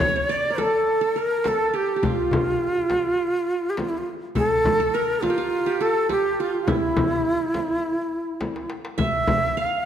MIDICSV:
0, 0, Header, 1, 5, 480
1, 0, Start_track
1, 0, Tempo, 580271
1, 1683, Time_signature, 4, 2, 24, 8
1, 8151, End_track
2, 0, Start_track
2, 0, Title_t, "Qanun"
2, 0, Program_c, 0, 107
2, 9, Note_on_c, 0, 73, 61
2, 65, Note_off_c, 0, 73, 0
2, 68, Note_on_c, 0, 73, 54
2, 126, Note_off_c, 0, 73, 0
2, 129, Note_on_c, 0, 73, 64
2, 242, Note_on_c, 0, 74, 88
2, 291, Note_off_c, 0, 73, 0
2, 417, Note_on_c, 0, 70, 54
2, 481, Note_on_c, 0, 69, 70
2, 530, Note_off_c, 0, 70, 0
2, 833, Note_off_c, 0, 69, 0
2, 836, Note_on_c, 0, 69, 62
2, 958, Note_on_c, 0, 70, 67
2, 1007, Note_off_c, 0, 69, 0
2, 1056, Note_off_c, 0, 74, 0
2, 1201, Note_on_c, 0, 69, 77
2, 1250, Note_off_c, 0, 70, 0
2, 1435, Note_on_c, 0, 67, 67
2, 1619, Note_off_c, 0, 67, 0
2, 1623, Note_on_c, 0, 67, 49
2, 1678, Note_on_c, 0, 65, 61
2, 2169, Note_off_c, 0, 69, 0
2, 2661, Note_off_c, 0, 67, 0
2, 3028, Note_off_c, 0, 65, 0
2, 3603, Note_on_c, 0, 69, 78
2, 3965, Note_off_c, 0, 69, 0
2, 3969, Note_on_c, 0, 69, 84
2, 4090, Note_on_c, 0, 70, 80
2, 4140, Note_off_c, 0, 69, 0
2, 4321, Note_on_c, 0, 65, 75
2, 4383, Note_on_c, 0, 67, 65
2, 4444, Note_off_c, 0, 65, 0
2, 4447, Note_on_c, 0, 65, 71
2, 4680, Note_off_c, 0, 67, 0
2, 4684, Note_on_c, 0, 67, 72
2, 4802, Note_on_c, 0, 69, 75
2, 4852, Note_off_c, 0, 70, 0
2, 5037, Note_off_c, 0, 67, 0
2, 5041, Note_on_c, 0, 67, 72
2, 5290, Note_off_c, 0, 65, 0
2, 5293, Note_on_c, 0, 65, 68
2, 5523, Note_on_c, 0, 64, 68
2, 5572, Note_off_c, 0, 65, 0
2, 5771, Note_off_c, 0, 69, 0
2, 6079, Note_off_c, 0, 67, 0
2, 7167, Note_off_c, 0, 64, 0
2, 7426, Note_on_c, 0, 76, 82
2, 7916, Note_on_c, 0, 77, 78
2, 7966, Note_off_c, 0, 76, 0
2, 8151, Note_off_c, 0, 77, 0
2, 8151, End_track
3, 0, Start_track
3, 0, Title_t, "Ney"
3, 0, Program_c, 1, 77
3, 0, Note_on_c, 1, 73, 99
3, 265, Note_on_c, 1, 74, 86
3, 277, Note_off_c, 1, 73, 0
3, 498, Note_on_c, 1, 69, 86
3, 511, Note_off_c, 1, 74, 0
3, 976, Note_on_c, 1, 70, 91
3, 989, Note_off_c, 1, 69, 0
3, 1221, Note_on_c, 1, 69, 87
3, 1233, Note_off_c, 1, 70, 0
3, 1454, Note_on_c, 1, 67, 76
3, 1466, Note_off_c, 1, 69, 0
3, 1700, Note_on_c, 1, 65, 91
3, 1713, Note_off_c, 1, 67, 0
3, 3059, Note_on_c, 1, 67, 58
3, 3072, Note_off_c, 1, 65, 0
3, 3140, Note_on_c, 1, 65, 68
3, 3152, Note_off_c, 1, 67, 0
3, 3218, Note_on_c, 1, 64, 64
3, 3231, Note_off_c, 1, 65, 0
3, 3291, Note_on_c, 1, 65, 64
3, 3304, Note_off_c, 1, 64, 0
3, 3365, Note_off_c, 1, 65, 0
3, 3616, Note_on_c, 1, 69, 106
3, 4089, Note_on_c, 1, 70, 100
3, 4101, Note_off_c, 1, 69, 0
3, 4330, Note_on_c, 1, 65, 92
3, 4342, Note_off_c, 1, 70, 0
3, 4810, Note_on_c, 1, 69, 98
3, 4823, Note_off_c, 1, 65, 0
3, 5046, Note_off_c, 1, 69, 0
3, 5056, Note_on_c, 1, 67, 92
3, 5297, Note_on_c, 1, 65, 75
3, 5309, Note_off_c, 1, 67, 0
3, 5541, Note_on_c, 1, 64, 91
3, 5553, Note_off_c, 1, 65, 0
3, 7209, Note_off_c, 1, 64, 0
3, 7443, Note_on_c, 1, 76, 95
3, 7922, Note_on_c, 1, 77, 91
3, 7934, Note_off_c, 1, 76, 0
3, 8151, Note_off_c, 1, 77, 0
3, 8151, End_track
4, 0, Start_track
4, 0, Title_t, "Darbuka"
4, 0, Note_on_c, 9, 64, 73
4, 80, Note_off_c, 9, 64, 0
4, 363, Note_on_c, 9, 62, 23
4, 445, Note_off_c, 9, 62, 0
4, 957, Note_on_c, 9, 62, 25
4, 1040, Note_off_c, 9, 62, 0
4, 1193, Note_on_c, 9, 63, 74
4, 1276, Note_off_c, 9, 63, 0
4, 1677, Note_on_c, 9, 64, 83
4, 1760, Note_off_c, 9, 64, 0
4, 1913, Note_on_c, 9, 64, 79
4, 1996, Note_off_c, 9, 64, 0
4, 2279, Note_on_c, 9, 62, 23
4, 2362, Note_off_c, 9, 62, 0
4, 2396, Note_on_c, 9, 63, 67
4, 2479, Note_off_c, 9, 63, 0
4, 2877, Note_on_c, 9, 62, 21
4, 2959, Note_off_c, 9, 62, 0
4, 3121, Note_on_c, 9, 63, 68
4, 3204, Note_off_c, 9, 63, 0
4, 3600, Note_on_c, 9, 64, 80
4, 3683, Note_off_c, 9, 64, 0
4, 3840, Note_on_c, 9, 64, 79
4, 3923, Note_off_c, 9, 64, 0
4, 4199, Note_on_c, 9, 62, 23
4, 4281, Note_off_c, 9, 62, 0
4, 4323, Note_on_c, 9, 63, 52
4, 4406, Note_off_c, 9, 63, 0
4, 4807, Note_on_c, 9, 62, 23
4, 4890, Note_off_c, 9, 62, 0
4, 5048, Note_on_c, 9, 63, 57
4, 5131, Note_off_c, 9, 63, 0
4, 5519, Note_on_c, 9, 64, 80
4, 5602, Note_off_c, 9, 64, 0
4, 5761, Note_on_c, 9, 64, 83
4, 5844, Note_off_c, 9, 64, 0
4, 6120, Note_on_c, 9, 62, 24
4, 6202, Note_off_c, 9, 62, 0
4, 6239, Note_on_c, 9, 63, 52
4, 6321, Note_off_c, 9, 63, 0
4, 6600, Note_on_c, 9, 62, 21
4, 6682, Note_off_c, 9, 62, 0
4, 6723, Note_on_c, 9, 62, 23
4, 6805, Note_off_c, 9, 62, 0
4, 6954, Note_on_c, 9, 63, 54
4, 7036, Note_off_c, 9, 63, 0
4, 7080, Note_on_c, 9, 62, 58
4, 7163, Note_off_c, 9, 62, 0
4, 7193, Note_on_c, 9, 63, 67
4, 7276, Note_off_c, 9, 63, 0
4, 7318, Note_on_c, 9, 62, 80
4, 7401, Note_off_c, 9, 62, 0
4, 7431, Note_on_c, 9, 64, 88
4, 7514, Note_off_c, 9, 64, 0
4, 7675, Note_on_c, 9, 64, 90
4, 7758, Note_off_c, 9, 64, 0
4, 8034, Note_on_c, 9, 62, 23
4, 8117, Note_off_c, 9, 62, 0
4, 8151, End_track
5, 0, Start_track
5, 0, Title_t, "Frame drum"
5, 0, Note_on_c, 9, 64, 92
5, 83, Note_off_c, 9, 64, 0
5, 481, Note_on_c, 9, 64, 60
5, 563, Note_off_c, 9, 64, 0
5, 1205, Note_on_c, 9, 64, 64
5, 1288, Note_off_c, 9, 64, 0
5, 1681, Note_on_c, 9, 64, 80
5, 1764, Note_off_c, 9, 64, 0
5, 1926, Note_on_c, 9, 64, 90
5, 2009, Note_off_c, 9, 64, 0
5, 2404, Note_on_c, 9, 64, 60
5, 2486, Note_off_c, 9, 64, 0
5, 3125, Note_on_c, 9, 64, 66
5, 3207, Note_off_c, 9, 64, 0
5, 3609, Note_on_c, 9, 64, 75
5, 3692, Note_off_c, 9, 64, 0
5, 3849, Note_on_c, 9, 64, 85
5, 3932, Note_off_c, 9, 64, 0
5, 4329, Note_on_c, 9, 64, 64
5, 4412, Note_off_c, 9, 64, 0
5, 5041, Note_on_c, 9, 64, 59
5, 5124, Note_off_c, 9, 64, 0
5, 5523, Note_on_c, 9, 64, 90
5, 5606, Note_off_c, 9, 64, 0
5, 5762, Note_on_c, 9, 64, 97
5, 5845, Note_off_c, 9, 64, 0
5, 6242, Note_on_c, 9, 64, 62
5, 6325, Note_off_c, 9, 64, 0
5, 6956, Note_on_c, 9, 64, 68
5, 7038, Note_off_c, 9, 64, 0
5, 7433, Note_on_c, 9, 64, 81
5, 7515, Note_off_c, 9, 64, 0
5, 7672, Note_on_c, 9, 64, 90
5, 7755, Note_off_c, 9, 64, 0
5, 8151, End_track
0, 0, End_of_file